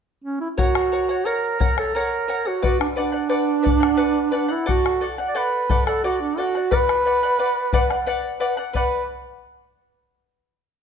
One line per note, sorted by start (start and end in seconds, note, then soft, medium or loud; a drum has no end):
0.24 0.40 C#4 medium
0.41 0.49 E4 medium
0.57 1.28 F#4 medium
0.57 0.91 A#4 medium
0.57 0.92 C#5 medium
0.57 0.92 F#5 medium
0.57 bombo low medium
0.75 bombo rim medium
0.92 1.09 A#4 soft
0.92 1.09 C#5 medium
0.92 1.08 F#5 medium
1.09 1.25 C#5 soft
1.09 1.25 F#5 soft
1.09 bombo rim soft
1.25 1.58 A#4 medium
1.25 1.78 A#4 medium
1.25 1.59 C#5 medium
1.25 1.60 F#5 medium
1.25 bombo rim soft
1.59 1.77 A#4 medium
1.59 1.77 C#5 medium
1.59 1.75 F#5 medium
1.59 bombo low medium
1.77 1.98 A4 medium
1.77 1.95 C#5 soft
1.77 1.94 F#5 soft
1.77 bombo rim medium
1.95 2.27 A#4 medium
1.95 2.49 A#4 medium
1.95 2.28 C#5 medium
1.95 2.28 F#5 medium
2.28 2.45 A#4 medium
2.28 2.46 C#5 medium
2.28 2.44 F#5 medium
2.28 bombo rim soft
2.45 2.63 F#4 medium
2.45 2.63 C#5 soft
2.45 2.61 F#5 soft
2.45 bombo rim soft
2.62 2.79 F#4 medium
2.62 2.95 B4 medium
2.62 2.96 D5 medium
2.62 2.96 F#5 medium
2.62 bombo low medium
2.81 2.88 D4 medium
2.81 bombo rim medium
2.96 4.29 D4 medium
2.96 3.13 B4 medium
2.96 3.12 D5 medium
2.96 3.11 F#5 medium
3.12 3.28 D5 soft
3.12 3.28 F#5 soft
3.12 bombo rim soft
3.29 3.61 B4 medium
3.29 3.62 D5 medium
3.29 3.63 F#5 medium
3.29 bombo rim soft
3.63 3.81 B4 medium
3.63 3.80 D5 medium
3.63 3.79 F#5 medium
3.63 bombo low medium
3.80 3.96 D5 soft
3.80 3.97 F#5 soft
3.80 bombo rim soft
3.97 4.30 B4 medium
3.97 4.31 D5 medium
3.97 4.32 F#5 medium
4.31 4.52 D4 medium
4.31 4.49 B4 medium
4.31 4.48 D5 medium
4.31 4.47 F#5 medium
4.31 bombo rim soft
4.48 4.67 E4 medium
4.48 4.65 D5 soft
4.48 4.66 F#5 soft
4.48 bombo rim soft
4.66 5.06 F#4 medium
4.66 5.00 A4 medium
4.66 5.00 D5 medium
4.66 5.01 F#5 medium
4.66 bombo low medium
4.86 bombo rim medium
5.01 5.18 A4 medium
5.01 5.18 D5 medium
5.01 5.17 F#5 medium
5.18 5.34 D5 soft
5.18 5.34 F#5 soft
5.18 bombo rim soft
5.28 5.38 D5 medium
5.35 5.68 A4 medium
5.35 5.86 B4 loud
5.35 5.69 D5 medium
5.35 5.69 F#5 medium
5.35 bombo rim soft
5.69 5.86 A4 medium
5.69 5.87 D5 medium
5.69 5.86 F#5 medium
5.69 bombo low medium
5.86 6.02 A4 medium
5.86 6.03 D5 soft
5.86 6.04 F#5 soft
5.86 bombo rim medium
6.04 6.19 F#4 medium
6.04 6.36 A4 medium
6.04 6.37 D5 medium
6.04 6.38 F#5 medium
6.21 6.40 D4 medium
6.37 6.75 F#4 medium
6.37 6.54 A4 medium
6.37 6.55 D5 soft
6.37 6.54 F#5 medium
6.37 bombo rim soft
6.55 6.71 D5 soft
6.55 6.71 F#5 soft
6.55 bombo rim soft
6.71 7.04 B4 medium
6.71 8.08 B4 loud
6.71 7.05 D5 medium
6.71 7.05 F#5 medium
6.71 bombo low medium
6.89 bombo rim soft
7.05 7.22 B4 soft
7.05 7.22 D5 medium
7.05 7.22 F#5 medium
7.23 7.38 D5 soft
7.23 7.38 F#5 medium
7.23 bombo rim soft
7.39 7.71 B4 medium
7.39 7.72 D5 medium
7.39 7.73 F#5 medium
7.73 7.90 B4 medium
7.73 7.90 D5 medium
7.73 7.89 F#5 medium
7.73 bombo low medium
7.90 8.06 D5 soft
7.90 8.06 F#5 soft
7.90 bombo rim soft
8.06 8.39 B4 medium
8.06 8.39 D5 medium
8.06 8.40 F#5 medium
8.06 bombo rim soft
8.40 8.57 B4 medium
8.40 8.57 D5 medium
8.40 8.56 F#5 medium
8.57 8.74 D5 soft
8.57 8.74 F#5 medium
8.57 bombo rim soft
8.73 9.01 B4 medium
8.73 9.06 B4 medium
8.73 9.02 D5 medium
8.73 9.02 F#5 medium
8.73 bombo low medium